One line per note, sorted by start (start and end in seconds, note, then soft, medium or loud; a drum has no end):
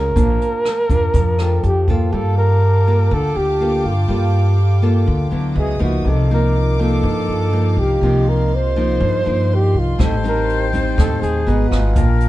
0.00 0.12 C#2 loud
0.00 0.14 C#3 medium
0.00 0.12 A#3 medium
0.00 0.12 F4 medium
0.00 0.10 G#4 soft
0.00 0.12 G#4 medium
0.00 0.12 A#4 soft
0.00 1.64 A#4 loud
0.00 0.13 C#5 soft
0.00 0.14 F5 medium
0.14 0.39 A#1 medium
0.14 1.12 A#3 medium
0.14 0.65 D4 soft
0.14 0.65 F4 medium
0.14 1.36 C5 soft
0.14 1.35 A5 soft
0.14 kick medium
0.14 closed hi-hat medium
0.18 1.37 D5 soft
0.18 1.39 F5 soft
0.41 closed hi-hat soft
0.65 cross-stick medium
0.65 closed hi-hat soft
0.89 1.12 F2 medium
0.89 1.35 D4 medium
0.89 1.35 F4 medium
0.89 kick medium
0.89 closed hi-hat soft
1.14 1.59 F2 loud
1.14 2.11 F3 medium
1.14 kick medium
1.14 closed hi-hat medium
1.39 1.85 D4 soft
1.39 1.85 F4 medium
1.39 2.12 A4 soft
1.39 1.85 A4 medium
1.39 2.13 C5 soft
1.39 2.13 D5 soft
1.39 2.14 G5 medium
1.39 cross-stick medium
1.39 closed hi-hat soft
1.63 2.09 F2 loud
1.63 1.87 G4 medium
1.63 closed hi-hat soft
1.88 2.60 A#3 medium
1.88 2.15 F4 medium
1.88 2.60 F4 medium
1.88 2.61 A4 medium
1.88 kick soft
1.88 closed hi-hat soft
2.11 3.07 G2 loud
2.11 3.09 G3 medium
2.11 2.37 A4 medium
2.11 4.06 D5 soft
2.11 5.53 F5 medium
2.11 5.52 G5 medium
2.11 4.04 A5 soft
2.11 5.53 A5 medium
2.11 5.53 D6 medium
2.16 4.07 F5 medium
2.38 3.15 A#4 loud
2.87 3.56 A#3 medium
2.87 3.56 F4 medium
2.87 3.57 A4 medium
3.11 3.34 D2 loud
3.11 4.07 D3 medium
3.11 3.38 A4 loud
3.36 3.81 D2 medium
3.36 3.87 G4 loud
3.61 3.92 A#3 medium
3.61 3.92 F4 medium
3.61 3.92 A4 medium
3.84 4.07 G2 medium
3.84 4.59 F4 medium
4.06 5.03 G2 loud
4.06 5.05 G3 medium
4.06 4.58 A#3 medium
4.06 4.58 F4 medium
4.06 5.52 A4 soft
4.06 4.58 A4 medium
4.06 5.54 D5 soft
4.13 5.55 F5 medium
4.82 5.28 A#3 medium
4.82 5.28 F4 medium
4.82 5.28 A4 medium
5.06 5.30 D2 loud
5.06 5.53 D3 medium
5.30 5.55 D2 medium
5.30 5.76 F#3 medium
5.30 5.77 B3 medium
5.30 5.77 E4 medium
5.54 5.79 C#2 loud
5.54 6.04 F#4 medium
5.54 6.04 B4 medium
5.54 6.05 B4 soft
5.54 6.05 D#5 soft
5.54 6.06 E5 medium
5.54 6.04 F#5 medium
5.54 6.04 D#6 medium
5.59 5.81 G#4 medium
5.79 6.04 C#2 medium
5.79 6.30 F3 medium
5.79 6.30 A#3 medium
5.79 6.30 D#4 medium
5.79 6.10 F#4 medium
6.02 7.00 C2 medium
6.02 7.02 C3 medium
6.02 7.98 A#3 soft
6.02 9.95 A#3 medium
6.02 7.97 F4 medium
6.02 9.95 F5 medium
6.02 8.01 D6 medium
6.07 6.32 A4 medium
6.07 7.99 D5 soft
6.07 8.00 D#5 medium
6.31 6.76 F3 medium
6.31 6.76 A#3 medium
6.31 6.76 D#4 medium
6.31 6.83 A#4 medium
6.79 7.49 F3 medium
6.79 7.49 A#3 medium
6.79 7.50 D#4 medium
6.79 7.81 A4 loud
7.03 7.26 G2 loud
7.03 8.00 G2 medium
7.28 7.74 G2 medium
7.52 7.98 F3 medium
7.52 7.98 A#3 medium
7.52 7.98 D#4 medium
7.77 8.00 C2 medium
7.77 8.30 G4 medium
7.99 8.96 C2 medium
7.99 9.93 F4 soft
7.99 9.94 A#4 soft
7.99 9.95 D5 soft
7.99 11.43 C6 medium
8.03 8.99 C3 medium
8.03 8.51 F3 medium
8.03 8.52 A#3 medium
8.03 8.52 D#4 medium
8.03 9.96 D#5 medium
8.29 8.56 A#4 medium
8.55 9.57 C5 loud
8.76 9.22 F3 medium
8.76 9.22 A#3 medium
8.76 9.22 D#4 medium
9.00 9.24 G2 loud
9.00 9.97 G2 medium
9.25 9.71 G2 medium
9.25 9.97 F3 medium
9.25 9.97 A#3 medium
9.25 9.98 D#4 medium
9.55 9.80 G4 medium
9.74 9.97 C2 medium
9.79 10.01 F4 medium
9.95 10.94 A1 loud
9.95 10.95 A2 medium
9.95 10.13 G3 medium
9.95 10.14 C4 medium
9.95 11.42 G4 soft
9.95 11.49 C5 loud
9.95 11.44 C5 soft
9.95 11.45 G5 medium
9.95 11.45 A5 medium
9.95 11.43 A5 soft
9.95 kick medium
10.00 10.14 D#4 medium
10.00 10.24 A4 medium
10.00 11.45 D#5 medium
10.00 cross-stick medium
10.00 closed hi-hat medium
10.24 10.69 G3 medium
10.24 10.69 C4 medium
10.24 10.69 D#4 medium
10.24 closed hi-hat soft
10.28 10.70 A#4 medium
10.49 closed hi-hat soft
10.73 11.43 G3 medium
10.73 11.43 C4 medium
10.73 11.43 D#4 medium
10.73 kick soft
10.73 closed hi-hat soft
10.98 11.21 D#2 loud
10.98 11.45 A2 medium
10.98 11.22 A4 loud
10.98 kick medium
10.98 cross-stick medium
10.98 closed hi-hat medium
11.22 11.45 D#2 medium
11.22 11.68 G#4 medium
11.22 closed hi-hat soft
11.46 11.70 G#1 loud
11.46 11.79 B3 medium
11.46 11.96 F#4 medium
11.46 11.79 F#4 medium
11.46 11.95 G#4 medium
11.46 11.97 B4 loud
11.46 11.97 B4 soft
11.46 11.97 D#5 medium
11.46 11.96 F#5 medium
11.46 11.96 A#5 soft
11.46 closed hi-hat soft
11.70 11.94 G#1 loud
11.70 12.29 F4 medium
11.70 kick soft
11.70 cross-stick medium
11.70 closed hi-hat soft
11.93 12.29 A#1 loud
11.93 12.29 A#2 medium
11.93 12.29 A#3 soft
11.93 12.29 F4 medium
11.93 12.29 A#4 loud
11.93 12.29 G5 medium
11.93 12.29 A5 soft
11.93 kick medium
11.93 closed hi-hat medium
11.97 12.29 D4 medium
11.97 12.29 F4 medium
11.97 12.29 D5 medium
11.97 12.29 F5 medium
12.20 closed hi-hat medium